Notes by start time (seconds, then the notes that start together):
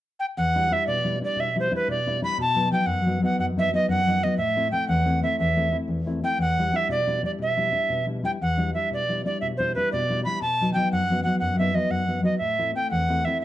0.20 G5
0.37 E2 F#5
0.55 G3 D4 E4
0.71 G3 D4 E4 E5
0.87 B2 D5
1.04 G3 D4 E4
1.21 G3 D4 E4 D5
1.36 B2
1.40 E5
1.56 G3 D4 E4
1.60 C5
1.71 G3 D4 E4
1.76 B4
1.88 B2 D5
2.06 G3 D4 E4
2.21 G3 D4 E4 B5
2.38 B2 A5
2.55 F#3 B3 D#4
2.71 F#3 B3 D#4 G5
2.86 F#2 F#5
3.05 F#3 B3 D#4
3.21 F#3 B3 D#4 F#5
3.38 F#2 F#5
3.56 F#3 B3 D#4 E5
3.73 F#3 B3 D#4 D#5
3.88 F#2 F#5
4.06 F#3 B3 D#4
4.23 F#3 B3 D#4 D#5
4.38 A2 E5
4.55 A3 C4 E4
4.72 A3 C4 E4 G5
4.88 E2 F#5
5.05 A3 C4 E4
5.23 A3 C4 E4 E5
5.39 E2 E5
5.56 A3 C4 E4
5.72 A3 C4 E4
5.88 E2
6.06 A3 C4 E4
6.23 A3 C4 E4 G5
6.38 E2 F#5
6.58 G3 D4 E4
6.73 G3 D4 E4 E5
6.89 B2 D5
7.06 G3 D4 E4
7.23 G3 D4 E4 D5
7.39 B2 E5
7.57 G3 D4 E4
7.71 G3 D4 E4
7.89 B2
8.06 G3 D4 E4
8.23 G3 D4 E4 G5
8.41 E2 F#5
8.57 G3 D4 E4
8.74 G3 D4 E4 E5
8.91 B2 D5
9.09 G3 D4 E4
9.25 G3 D4 E4 D5
9.41 B2 E5
9.57 G3 D4 E4 C5
9.75 G3 D4 E4 B4
9.92 B2 D5
10.09 G3 D4 E4
10.25 G3 D4 E4 B5
10.41 B2 A5
10.61 F#3 B3 D#4
10.74 F#3 B3 D#4 G5
10.92 F#2 F#5
11.10 F#3 B3 D#4
11.24 F#3 B3 D#4 F#5
11.40 F#2 F#5
11.58 F#3 B3 D#4 E5
11.74 F#3 B3 D#4 D#5
11.89 F#2 F#5
12.07 F#3 B3 D#4
12.22 F#3 B3 D#4 D#5
12.38 A2 E5
12.58 A3 C4 E4
12.75 A3 C4 E4 G5
12.91 E2 F#5
13.09 A3 C4 E4
13.25 A3 C4 E4 E5
13.41 E5